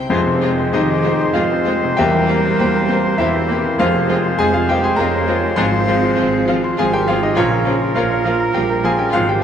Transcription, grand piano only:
Already playing: C2 C3 G3 E4 C5
0.10 F2 C4 G#4 C5
0.27 C3
0.43 G#3
0.59 C4
0.73 D#4 C5 D#5
0.90 G#4
1.06 C5
1.21 C6
1.33 F4 C5 F5
1.52 C4
1.67 G#3
1.84 C3
1.97 E2 G4 E5 G5
2.16 E3
2.30 A#3
2.46 C4
2.61 C5
2.76 A#4
2.90 C5
3.04 C6
3.18 E4 C5 E5
3.34 C4
3.48 A#3
3.64 E3
3.79 F2 F4 C5 F5
3.94 C3
4.10 G#3
4.25 F4
4.39 G#4 C5 G#5
4.54 F4 G#4 F5
4.69 G4 F5 G5
4.84 G#4 G#5 C6
4.96 A#4 F5 A#5
5.14 C5
5.28 F4
5.44 G#3
5.56 G#2 C5 G#5 C6
5.72 F3
5.88 G#3
6.02 F4
6.18 C5
6.33 G#4
6.48 F5
6.64 C6
6.79 G#4 F5 G#5
6.93 G4 C5 G5
7.08 F4 F5
7.23 G#3 D#4 D#5
7.37 A#2 C#4 A#4 C#5
7.51 F3
7.66 C#4
7.81 F4
7.96 F4 A#4 C#5 F5
8.11 C#5
8.25 F5
8.40 A#5
8.54 G4 F5 G5
8.70 A#4
8.85 F4 G#4 G#5
8.98 C#4 G4 G5
9.13 G#2 F4 F5
9.29 G#3 G4 G5

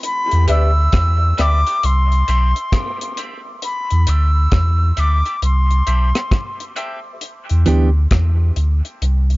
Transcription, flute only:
0.05 B5
0.51 E6
1.41 D6
1.85 C6
3.64 B5
4.09 E6
5.00 D6
5.45 C6

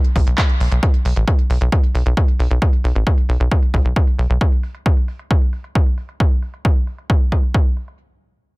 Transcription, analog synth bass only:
0.16 B1
0.27 B1
0.60 B1
0.72 B1
1.05 B1
1.16 A1
1.50 B1
1.61 B1
1.95 B1
2.06 B1
2.40 B1
2.51 B1
2.84 B1
2.95 A1
3.29 B1
3.40 B1
3.74 B1
3.85 B1
4.19 B1
4.30 B1

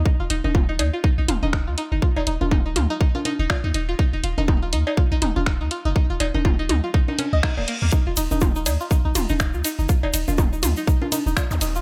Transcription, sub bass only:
0.20 D#1
0.30 D#1
0.44 D#1
0.79 D#2
1.18 A#1
1.28 D#1
1.43 D#1
1.67 D#2
1.92 F#1
2.16 D#1
2.27 D#1
2.41 D#1
2.76 D#2
3.39 D#1
3.64 D#2
3.74 D#1
4.13 D#1
4.23 D#1
4.38 D#1
4.73 D#2
5.12 A#1
5.22 D#1
5.36 D#1
5.61 D#2
5.85 F#1
6.10 D#1
6.20 D#1
6.34 D#1
6.69 D#2
7.33 C#2
7.57 D#1
7.82 D#2
8.07 D#1
8.17 D#1
8.31 D#1
8.66 D#2
9.05 A#1
9.15 D#1
9.30 D#1
9.54 D#2
9.79 F#1
10.03 D#1
10.14 D#1
10.28 D#1
10.63 D#2
11.26 D#1
11.51 D#2
11.61 D#1

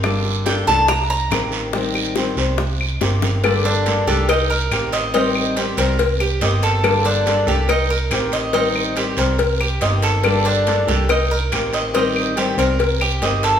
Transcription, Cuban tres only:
0.46 G5
0.67 A5
0.89 A#5
1.10 A#5
3.65 D4
4.07 G4
4.29 D#4
4.50 A#4
4.93 D#5
5.14 D#4
5.57 G4
5.78 A#4
6.20 G4
6.42 D#5
6.63 A4
7.06 D4
7.48 G4
7.69 D#4
7.90 A#4
8.33 D#5
8.54 D#4
8.97 G4
9.18 A#4
9.61 G4
9.82 D#5
10.03 A4
10.46 D4
10.88 G4
11.10 D#4
11.31 A#4
11.74 D#5
11.95 D#4
12.37 G4
12.59 A#4
13.01 G4
13.23 D#5
13.44 A4

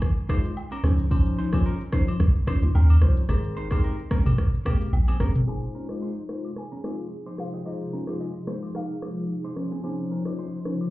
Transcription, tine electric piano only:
0.29 G#3 D#4 F4 C5
0.84 F3 C#4 D#4 C5
1.11 F3 C#4 D#4 C5
1.53 F3 C#4 D#4 C5
1.92 F3 C#4 D#4 C5
2.47 F3 C#4 D#4 C5
3.02 F3 C#4 D#4 C5
3.29 G#3 C4 G4 A#4
3.71 G#3 C4 G4 A#4
4.11 G#3 C4 G4 A#4
4.65 G#3 C4 G4 A#4
5.20 G#3 C4 G4 A#4
5.47 G#3 D#4 F4 C5
5.89 G#3 D#4 F4 C5
6.29 G#3 D#4 F4 C5
6.84 G#3 D#4 F4 C5
7.38 G#3 D#4 F4 C5
7.66 G#3 D#4 F4 C5
8.08 G#3 D#4 F4 C5
8.47 G#3 D#4 F4 C5
9.02 G#3 D#4 F4 C5
9.56 F3 C#4 D#4 C5
9.83 F3 C#4 D#4 C5
10.26 F3 C#4 D#4 C5
10.65 F3 C#4 D#4 C5

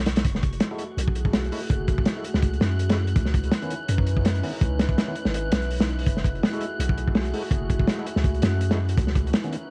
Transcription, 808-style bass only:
Already playing: B1
0.25 F#1
0.97 B1
1.70 F#1
2.35 C#2
2.61 F#2
3.16 C#2
3.89 F#2
4.61 C#2
5.26 G#1
5.52 B1
6.06 F#1
6.79 B1
7.51 F#1
8.16 C#2
8.43 F#2
8.97 C#2

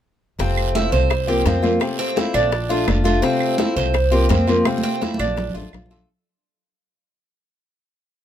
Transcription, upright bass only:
0.39 F1
0.92 C2
1.45 F2
2.34 A#1
2.87 F1
3.76 C2
4.30 F2
5.19 A#1
5.54 A1
5.73 A#1

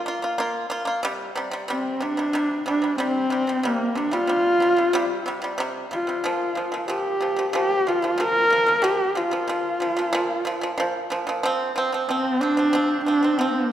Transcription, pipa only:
0.06 A#3 F4
0.22 A#3 F4
0.38 A#3 F4
0.70 A#3 F4
0.85 A#3 F4
1.03 C3 G3
1.35 C3 G3
1.51 C3 G3
1.68 C3 G3
2.00 C3 G3
2.17 C3 G3
2.33 C3 G3
2.66 C3 G3
2.82 C3 G3
2.98 C3 G3
3.30 C3 G3
3.47 C3 G3
3.63 C3 G3
3.95 C3 G3
4.11 C3 G3
4.27 C3 G3
4.60 C3 G3
4.76 C3 G3
4.93 C3 G3
5.26 C3 G3
5.42 C3 G3
5.58 C3 G3
5.91 C3 G3
6.07 C3 G3
6.24 A#2 F3
6.55 A#2 F3
6.72 A#2 F3
6.88 A#2 F3
7.21 A#2 F3
7.36 A#2 F3
7.53 A#2 F3
7.87 A#2 F3
8.02 A#2 F3
8.18 A#2 F3
8.50 A#2 F3
8.66 A#2 F3
8.82 A#2 F3
9.15 A#2 F3
9.31 A#2 F3
9.48 A#2 F3
9.80 A#2 F3
9.97 A#2 F3
10.13 A#2 F3
10.45 A#2 F3
10.61 A#2 F3
10.78 A#2 F3
11.10 A#2 F3
11.27 A#2 F3
11.43 F3 C4
11.76 F3 C4
11.92 F3 C4
12.09 F3 C4
12.41 F3 C4
12.57 F3 C4
12.73 F3 C4
13.06 F3 C4
13.23 F3 C4
13.39 F3 C4

